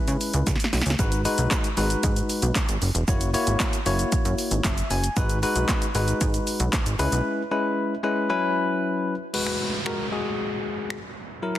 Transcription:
Already playing: G#3 C#4 E4 B4
0.08 C#3, closed hi-hat, shaker
0.21 open hi-hat, shaker
0.33 C#2, closed hi-hat, shaker
0.47 C#2, kick, snare, closed hi-hat, shaker
0.56 snare
0.60 closed hi-hat, shaker
0.64 snare
0.73 B1, snare, open hi-hat, shaker
0.81 snare
0.86 C#2, closed hi-hat, shaker
0.90 snare
0.99 G#1 G#3 D#4 F#4 B4, kick, closed hi-hat, shaker
1.12 closed hi-hat, shaker
1.25 G#3 D#4 F#4 B4, open hi-hat, shaker
1.38 B1, closed hi-hat, shaker
1.51 kick, snare, clap, closed hi-hat, shaker
1.64 closed hi-hat, shaker
1.77 G#1 G#3 D#4 F#4 B4, open hi-hat, shaker
1.90 closed hi-hat, shaker
2.03 G#2, kick, closed hi-hat, shaker
2.16 closed hi-hat, shaker
2.29 open hi-hat, shaker
2.42 B1, closed hi-hat, shaker
2.55 kick, snare, clap, closed hi-hat, shaker
2.69 G#1, closed hi-hat, shaker
2.82 F#1, open hi-hat, shaker
2.95 E1, closed hi-hat, shaker
3.08 F#1 A#3 E4 F#4 C#5, kick, closed hi-hat, shaker
3.21 closed hi-hat, shaker
3.34 A#3 E4 F#4 C#5, open hi-hat, shaker
3.47 G#1, closed hi-hat, shaker
3.60 kick, snare, clap, closed hi-hat, shaker
3.73 closed hi-hat, shaker
3.86 F#1 A#3 E4 F#4 C#5, open hi-hat, shaker
3.99 closed hi-hat, shaker
4.12 F#2, kick, closed hi-hat, shaker
4.25 F#2, closed hi-hat, shaker
4.38 open hi-hat, shaker
4.51 G#1, closed hi-hat, shaker
4.64 F#1 E5, kick, snare, clap, closed hi-hat, shaker
4.77 closed hi-hat, shaker
4.90 F#1 G#5, open hi-hat, shaker
5.04 closed hi-hat, shaker
5.16 G#1 G#3 D#4 F#4 B4, kick, closed hi-hat, shaker
5.30 closed hi-hat, shaker
5.43 G#3 D#4 F#4 B4, open hi-hat, shaker
5.56 B1, closed hi-hat, shaker
5.69 kick, snare, clap, closed hi-hat, shaker
5.82 closed hi-hat, shaker
5.95 G#1 G#3 D#4 F#4 B4, open hi-hat, shaker
6.08 closed hi-hat, shaker
6.21 G#2, kick, closed hi-hat, shaker
6.34 closed hi-hat, shaker
6.47 open hi-hat, shaker
6.60 B1, closed hi-hat, shaker
6.73 kick, snare, clap, closed hi-hat, shaker
6.86 G#1, closed hi-hat, shaker
6.99 C#2 G#3 C#4 E4 B4, open hi-hat, shaker
7.12 B1, closed hi-hat, shaker
7.51 G#3 C#4 E4 B4
8.03 G#3 C#4 E4 B4
8.29 F#3 C#4 E4 B4
9.34 G#3 F#4 B4, crash, downlifter
9.47 finger snap
9.86 G#3 F#4 A#4, finger snap
10.12 G#3 F#4 G#4
10.90 finger snap
11.42 F#3 E4 A#4
11.55 finger snap

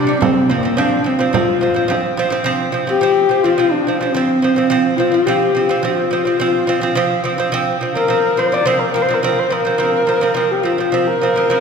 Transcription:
Already playing: D4
0.07 C3 G3
0.21 F3 C4, frame drum
0.50 F3 A#3 C4, frame drum
0.63 F3 C4
0.77 F3 C4 D4, frame drum
1.04 F3 C4, frame drum
1.19 F3 C4
1.33 F3 C4 F4, frame drum
1.61 F3 C4, frame drum
1.74 F3 C4
1.88 F3 C4, frame drum
2.17 F3 C4, frame drum
2.30 F3 C4
2.44 F3 C4
2.72 F3 C4
2.87 F3 C4 G4
3.01 F3 C4
3.29 F3 C4
3.43 F3 C4 F4
3.58 F3 C4
3.71 D4
3.87 F3 C4
3.98 F3 C4
4.02 C4
4.14 F3 C4
4.42 F3 C4
4.56 F3 C4
4.70 F3 C4
4.97 F3 C4 F4
5.12 F3 C4
5.25 F3 C4 G4
5.55 F3 C4
5.69 F3 C4
5.82 F3 C4 F4
6.11 F3 C4
6.25 F3 C4
6.40 F3 C4
6.67 F3 C4
6.81 F3 C4
6.95 F3 C4
7.24 F3 C4
7.38 F3 C4
7.52 F3 C4
7.81 F3 C4
7.95 F3 C4 A#4
8.08 F3 C4
8.37 F3 C4 C5
8.52 F3 C4 D5
8.66 F3 C4 C5
8.79 A#4
8.91 F3 A#4
8.96 C4
9.02 C5
9.09 F3 C4
9.14 A#4
9.23 F3 C4 A#4
9.39 C5
9.50 F3 C4 A#4
9.65 F3 C4
9.78 F3 C4
10.07 F3 C4
10.21 F3 C4
10.34 F3 C4
10.51 G4
10.63 F3 C4 F4
10.78 F3 C4
10.92 F3 C4
11.08 A#4
11.21 F3 C4
11.36 F3 C4
11.50 F3 C4

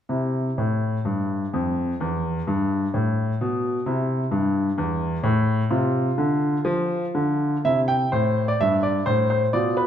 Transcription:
0.09 C3 E4
0.58 A2
1.05 G2
1.54 F2
2.00 E2
2.47 G2
2.94 A2
3.41 B2
3.86 C3 E4
4.31 G2
4.78 E2
5.23 A2
5.70 C3 F4
6.18 D3
6.65 F3
7.15 D3
7.65 C3 E4 E5
7.88 G5
8.12 A2 C5
8.48 D5
8.61 G2 E5
8.83 D5
9.06 A2 C5
9.30 C5
9.53 B2 F4 D5
9.77 B4

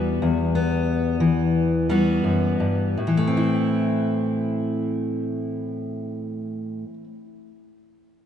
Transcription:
Already playing: E2 E3 G3 B3 F#4
0.22 E2
0.55 B3
1.20 E3
1.89 G3 B3 F#4
2.24 F#2
2.60 G2
2.97 A2
3.07 E3
3.17 A3
3.27 C4
3.37 E4

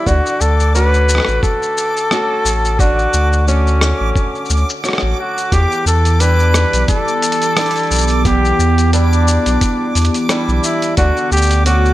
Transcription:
Already playing: G3 D4 E4 D6
0.07 D2 D3 F#4, kick, shaker
0.26 shaker
0.41 D2 A4, shaker
0.60 shaker
0.75 A3 C#4 F#4 B4, shaker
0.94 shaker
1.09 shaker
1.15 cross-stick
1.18 cross-stick
1.20 cross-stick
1.25 A1, cross-stick, shaker
1.43 A4, kick, shaker
1.62 shaker
1.77 shaker
1.97 shaker
2.11 A3 C#4 F#4, cross-stick, shaker
2.45 A1, shaker
2.65 shaker
2.79 D3 F#4, kick, shaker
2.99 shaker
3.14 D2, shaker
3.33 shaker
3.47 A3 C#4 F#4, shaker
3.67 shaker
3.81 cross-stick, shaker
4.01 A1
4.16 kick, shaker
4.35 shaker
4.45 shaker
4.50 D2, shaker
4.57 shaker
4.69 shaker
4.84 A3 C#4 F#4, cross-stick, shaker
4.89 cross-stick
4.93 cross-stick
4.98 cross-stick
5.02 A1
5.19 F#4
5.38 shaker
5.52 E2 E3 G4, kick, closed hi-hat, shaker
5.72 shaker
5.86 E2 A4, shaker
6.05 closed hi-hat, shaker
6.11 B3
6.20 G3 D4 E4 B4, closed hi-hat, shaker
6.39 G4, shaker
6.54 cross-stick, shaker
6.73 B1, closed hi-hat, shaker
6.88 A4, kick, closed hi-hat, shaker
7.08 shaker
7.22 closed hi-hat, shaker
7.32 closed hi-hat
7.42 closed hi-hat, shaker
7.57 G3 D4 E4, cross-stick, closed hi-hat, shaker
7.61 closed hi-hat
7.66 closed hi-hat
7.71 closed hi-hat
7.76 closed hi-hat, shaker
7.79 closed hi-hat
7.83 D5, closed hi-hat
7.87 B1, closed hi-hat
7.91 shaker
7.95 shaker
7.98 shaker
8.01 shaker
8.03 shaker
8.07 closed hi-hat, shaker
8.25 E2 G4, kick, closed hi-hat, shaker
8.45 shaker
8.59 E2, shaker
8.78 closed hi-hat, shaker
8.93 G3 D4 E4, closed hi-hat, shaker
9.13 shaker
9.28 shaker
9.46 B1, closed hi-hat, shaker
9.61 kick, closed hi-hat, shaker
9.95 E2, closed hi-hat, shaker
10.02 closed hi-hat
10.05 closed hi-hat
10.07 closed hi-hat
10.14 closed hi-hat, shaker
10.29 G3 D4 E4, cross-stick, closed hi-hat, shaker
10.48 B1, shaker
10.64 E4, shaker
10.82 closed hi-hat, shaker
10.97 D2 D3 F#4, kick, closed hi-hat, shaker
11.17 shaker
11.27 F#5
11.31 D2 G4, shaker
11.37 shaker
11.42 shaker
11.46 shaker
11.51 closed hi-hat, shaker
11.66 A3 C#4 F#4, closed hi-hat, shaker
11.86 A3, shaker

